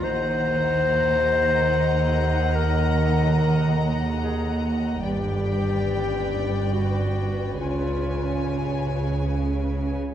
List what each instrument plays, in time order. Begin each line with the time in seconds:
0.04 double bass section D#2, synth drone D#2, cello section D#2, clarinet C5, violin section D#5 F#5 A#5
2.54 clarinet A#4
4.21 clarinet G#4
5.04 double bass section G1, synth drone G1, cello section G2, clarinet G4, violin section B4 D5 G5
6.73 clarinet F#4
7.59 synth drone C#2, double bass section C#2, cello section C#3, clarinet F4, violin section C#5 G#5